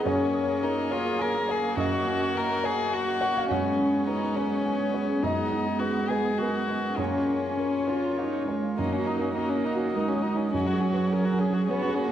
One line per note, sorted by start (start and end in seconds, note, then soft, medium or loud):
0.00 1.79 G#4 soft
0.00 1.80 G#4 medium
0.05 1.74 F#2 medium
0.05 3.50 A#3 soft
0.05 3.53 A#3 medium
0.05 0.65 C#4 medium
0.05 1.74 G#4 medium
0.05 0.47 A#4 medium
0.05 5.22 C#5 soft
0.05 0.90 C#5 medium
0.20 0.33 G#5 medium
0.34 0.80 C#4 soft
0.34 0.76 G#5 medium
0.48 0.91 A#4 medium
0.62 0.93 D#4 medium
0.62 1.09 A#4 soft
0.62 1.19 C#5 medium
0.77 1.47 G#5 soft
0.91 1.23 F4 medium
0.91 1.33 A#4 medium
0.91 1.37 C#5 soft
1.06 1.61 F5 medium
1.19 1.53 A#4 medium
1.19 2.77 C#5 medium
1.19 1.66 G#5 medium
1.35 2.34 A#4 medium
1.48 1.78 G#4 medium
1.48 1.78 C#5 medium
1.48 1.80 G#5 medium
1.63 1.80 F5 soft
1.77 3.46 F#2 medium
1.77 2.19 F#4 medium
1.77 3.53 F#4 medium
1.77 3.50 F#4 soft
1.77 2.38 F#4 medium
1.77 3.17 D#5 medium
1.91 2.04 D#5 soft
2.06 2.53 C#4 soft
2.06 2.48 D#5 medium
2.20 2.63 F#4 medium
2.35 2.92 A#4 medium
2.35 2.81 A#4 medium
2.35 2.66 A#4 medium
2.49 3.20 D#5 soft
2.64 3.06 F#4 medium
2.64 2.96 G#4 medium
2.64 3.10 C#5 medium
2.79 3.35 C#5 medium
2.92 3.49 F#4 medium
2.92 3.53 A#4 medium
2.92 3.20 F#5 soft
3.07 4.07 F#4 medium
3.21 3.50 C#5 medium
3.21 3.52 D#5 medium
3.21 3.35 F#5 medium
3.36 5.25 C#5 medium
3.36 3.50 F5 medium
3.49 5.19 F#2 medium
3.49 5.23 G#3 medium
3.49 6.99 B3 soft
3.49 4.06 C#4 medium
3.49 3.92 C#4 medium
3.49 5.22 C#4 medium
3.49 6.99 G#4 soft
3.49 4.61 F#5 medium
3.65 7.01 B3 soft
3.79 4.25 C#4 soft
3.93 4.35 C#4 medium
4.07 4.38 D#4 medium
4.07 4.65 F#4 medium
4.07 4.53 B4 soft
4.36 5.24 C#4 medium
4.36 4.79 C#4 medium
4.36 4.82 C#5 soft
4.51 5.07 G#4 medium
4.66 7.01 F#4 soft
4.66 5.11 G#5 soft
4.80 5.25 C#4 medium
4.94 5.23 C#5 soft
5.09 5.22 G#4 soft
5.23 6.95 F#2 medium
5.23 6.95 G#3 soft
5.23 6.95 B3 medium
5.23 5.81 D#4 medium
5.23 5.65 G#4 medium
5.23 6.06 D#5 medium
5.23 6.99 D#5 soft
5.37 5.51 F#5 soft
5.51 5.98 D#4 soft
5.51 5.95 F#5 soft
5.66 6.09 G#4 medium
5.80 6.11 F#4 soft
5.80 6.08 B4 soft
5.96 6.68 F#5 soft
6.09 6.40 G#4 soft
6.09 6.53 G#4 medium
6.09 6.37 B4 medium
6.09 6.56 D#5 soft
6.25 6.83 D#5 soft
6.38 7.01 F#4 soft
6.38 6.95 A#4 medium
6.38 6.86 G#5 soft
6.54 8.81 G#4 medium
6.68 6.98 D#5 soft
6.68 7.01 F#5 soft
6.84 7.01 D#5 soft
6.97 8.74 F#2 soft
6.97 7.51 A#3 soft
6.97 8.78 A#3 soft
6.97 8.55 C#4 soft
6.97 8.49 C#4 soft
6.97 8.78 F4 soft
6.97 8.15 G#4 soft
6.97 7.42 A#4 soft
6.97 8.78 C#5 soft
7.13 7.27 G#5 soft
7.28 7.76 C#4 soft
7.28 7.72 G#5 soft
7.43 7.87 A#4 soft
7.58 7.90 C#4 soft
7.58 8.06 A#4 soft
7.58 8.17 C#5 soft
7.73 8.46 G#5 soft
7.88 8.19 F4 soft
7.88 8.32 A#4 soft
7.88 8.36 C#5 soft
8.03 8.62 F5 soft
8.18 8.48 D#4 soft
8.18 9.79 C#5 soft
8.18 8.66 F5 soft
8.33 8.92 A#4 soft
8.48 8.79 G#3 soft
8.48 8.78 C#5 soft
8.48 8.80 G#5 soft
8.63 8.80 F5 soft
8.77 10.50 F#2 soft
8.77 9.36 A#3 medium
8.77 10.50 A#3 soft
8.77 9.08 C#4 soft
8.77 8.94 D#4 soft
8.77 9.21 F#4 medium
8.77 10.50 F#4 soft
8.77 10.50 D#5 soft
8.93 9.08 C#4 soft
8.93 9.36 A#4 soft
8.98 9.29 F#4 soft
9.06 9.23 D#4 soft
9.06 9.38 D#4 soft
9.17 9.48 A#4 soft
9.21 9.35 C#4 soft
9.21 9.65 F#4 medium
9.36 9.96 A#3 medium
9.36 9.68 C#4 soft
9.36 9.51 D#4 soft
9.36 9.68 F#4 soft
9.36 10.56 A#4 soft
9.49 9.66 C#4 soft
9.56 9.87 D#4 soft
9.65 9.79 D#4 soft
9.65 10.53 D#4 medium
9.65 10.08 F#4 medium
9.75 9.92 C#4 soft
9.75 10.07 F#4 soft
9.80 12.12 C#5 soft
9.93 10.55 G#3 medium
9.93 10.09 D#4 soft
9.93 10.26 A#4 soft
10.08 10.23 C#4 soft
10.08 10.66 F#4 medium
10.14 10.46 F#4 soft
10.22 10.38 D#4 soft
10.35 10.51 C#4 soft
10.35 10.54 D#4 soft
10.35 10.56 D#5 soft
10.52 12.12 F#2 soft
10.52 11.71 F#3 medium
10.52 10.68 C#4 soft
10.52 10.95 C#4 medium
10.52 12.12 C#4 soft
10.52 11.14 F#4 medium
10.52 12.12 G#4 soft
10.52 12.12 C#5 soft
10.67 10.82 F#4 soft
10.67 11.10 F#4 soft
10.73 11.04 G#4 soft
10.80 10.96 C#4 soft
10.93 11.39 C#4 medium
10.93 11.10 F#4 soft
10.93 11.24 B4 soft
11.10 11.26 C#4 soft
11.10 12.12 F#4 soft
11.10 11.43 G#4 soft
11.10 11.42 A#4 medium
11.24 11.40 F#4 soft
11.32 11.62 C#4 soft
11.39 11.55 C#4 soft
11.39 11.83 C#4 medium
11.39 11.70 G#4 soft
11.50 11.66 F#4 soft
11.50 11.81 G#4 soft
11.55 12.12 G#4 soft
11.67 12.00 B3 medium
11.67 11.84 C#4 soft
11.67 12.12 F#4 medium
11.67 12.01 B4 soft
11.82 12.12 C#4 medium
11.82 11.96 F#4 soft
11.89 12.12 G#4 soft
11.95 12.12 A#3 medium
11.95 12.12 C#4 soft
12.09 12.12 C#4 soft